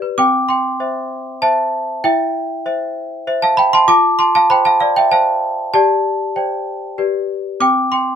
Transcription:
celesta
Already playing: G4 B4 D5
0.02 B4
0.18 C4 G5 D6
0.49 G5 C6
0.80 C5 E5
1.42 C5 E5 A5
2.04 E4 E5 G5
2.66 C5 E5
3.27 C5 E5
3.42 F5 A5
3.57 G5 B5
3.73 A5 C6
3.88 F4 A5 D6
4.19 A5 C6
4.35 F5 A5
4.50 C5 G5 B5
4.65 F5 A5
4.80 D5 F5
4.96 E5 G5
5.11 C5 F5 A5
5.74 G4 D5 A5
6.36 C5 D5 G5
6.98 G4 B4 D5
7.60 C4 G5 D6
7.92 G5 C6

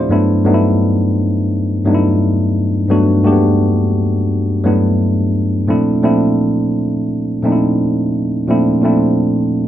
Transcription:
tine electric piano
Already playing: A#2 F3 A3 C4 D4 F4 G4 C5 D5 E5
0.00 E4
0.09 G2 F#3 A3 B3 D4 E4
0.45 G2 F#3 A3 B3 D4 D#4
0.54 E4
1.85 G2 F#3 A3 B3 D4 D#4
1.94 E4
2.89 G2 F#3 A3 B3 D4 F#4
3.24 G2 A3 A#3 D4 F#4 G4
3.32 B3
4.64 G2 F#3 A3 B3 D4 E4
5.67 A#2 F3 A3 C4 D4 E4
6.02 A#2 F3 A3 C4 D4 E4
7.43 A#2 F3 A3 C4 D4 D#4
7.52 E4
8.48 A#2 F3 A3 C4 D4 E4
8.82 A#2 F3 A3 C4 D4 E4

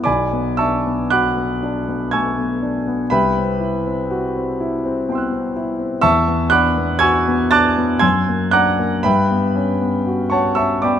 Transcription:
grand piano
0.04 B1 D5 G#5 B5 D6
0.33 B3
0.57 D4 E5 A5 C#6 E6
0.86 B3
1.10 F#4 F#5 B5 D6 F#6
1.37 B3
1.63 D4
1.89 B3
2.11 A3 G#5 C#6 E6 G#6
2.38 B3
2.62 D4
2.87 B3
3.10 C2 B4 E5 G5 B5
3.38 C4
3.61 E4
3.87 C4
4.11 F#4
4.37 C4
4.60 E4
4.85 C4
5.09 B3 G5 C6
5.15 E6 F#6
5.32 C4
5.56 E4
5.79 C4
6.01 E2 E5 A5 C#6 E6
6.28 B3
6.50 D4 F#5 B5 D6 F#6
6.78 B3
6.99 F#4 G#5 C#6 E6 G#6
7.28 B3
7.51 D4 A5 D6 F#6 A6
7.77 B3
7.99 F#2 G#5 C6 E6 G#6
8.29 A#3
8.51 D4 F#5 A#5 D6 F#6
8.79 A#3
9.03 G2 B4 E5 G5 B5
9.31 B3
9.55 C#4
9.82 B3
10.07 F#4
10.30 B3 C#5 F#5 A5 C#6
10.55 C#4 E5 A5 C#6 E6
10.82 B3 D5 G5 B5 D6

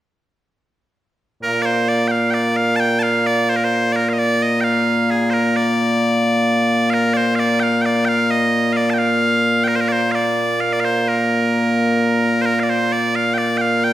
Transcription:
bagpipes
1.43 A#2 A#3 A#4
1.62 C5 D5
1.89 D5
2.08 F5 G5
2.31 D5 G5
2.56 F5
2.76 G5 A5
2.99 F5 A5
3.26 D5
3.49 C5
3.56 A#4
3.64 C5
3.92 A#4 D5
4.09 D#5 F5
4.19 D5
4.43 D#5
4.61 F5 G5
5.11 G#4
5.30 A#4 C5
5.56 D5
6.90 A#4 F5
7.14 C5 D5
7.35 D5 F5
7.60 F5 G5
7.82 G5
7.86 D5
8.05 F5 G5
8.31 D#5
8.73 F5
8.77 D5
8.90 G5 A5
8.98 F5
9.64 A#4 G5
9.76 C5
9.81 A#4
9.88 C5 D5
10.12 D5 F5
10.60 F5
10.73 D5
10.80 F5
10.85 C5
11.08 A#4
12.42 C5
12.46 A#4
12.60 D5 F5
12.70 C5
12.92 D5
13.15 F5
13.34 G5
13.38 D5
13.57 F5 G5
13.84 G5

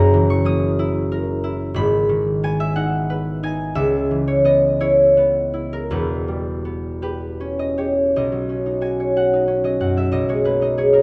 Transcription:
harp
Already playing: F#1 F#2 C#4 C#5 F#5 A#5
0.14 E3
0.30 C#6
0.45 A#3 D#6
0.79 E4
1.12 A#4
1.44 E4
1.74 G#1 G#2 B5
2.09 D#3
2.43 B3 G#5
2.60 E5
2.76 D#4 F#5
3.10 B4
3.43 D#4 G#5
3.75 C#2 E5
4.11 E3
4.28 C#5
4.44 B3 D#5
4.80 E4 C#5
5.17 B3
5.54 E4
5.73 A#4
5.90 E1 E2 B4
6.28 G3
6.65 B3
7.02 G4 B4
7.40 C#4
7.59 D#5
7.78 G4 C#5
8.16 B1 D#5
8.32 F#3
8.49 C#4
8.66 D#4
8.81 F#4 G#5
9.00 C#5
9.16 F#4 F#5
9.33 D#4
9.48 C#4
9.64 F#3 D#5
9.80 F#2 F#5
9.97 F#3 E5
10.12 B1 D#5
10.29 G#3 C#5
10.45 A#3 B4
10.61 D#4 D#5
10.78 G#4 C#5
10.93 D#4 A#4

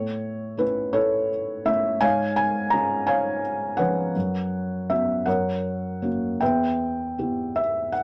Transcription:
felt piano
Already playing: A2 A4 C#5
0.57 A3 C#4 E4 B4
0.93 E4 A4 C#5
1.65 A3 C#4 E4 E5
2.01 G#2 C#5 F5 G#5
2.36 G#5
2.70 G#3 C#4 F4 A#5
3.07 C#5 F5 G#5
3.77 F3 G#3 C#4 B4 C#5 F#5
4.16 F#2
4.90 B3 C#4 F#4 E5
5.26 F#2 A#4 C#5 F#5
6.02 A#3 C#4 F#4
6.41 E2 B4 E5 G5
7.18 B3 E4 G4
7.56 E5
7.92 F#5

